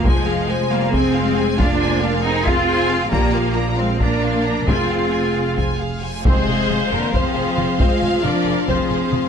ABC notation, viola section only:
X:1
M:7/8
L:1/8
Q:1/4=136
K:Fdor
V:1 name="Viola section"
F,3 G, A,3 | B,3 C C3 | F,3 A, B,3 | C4 z3 |
c4 A3 | A2 B2 A3 |]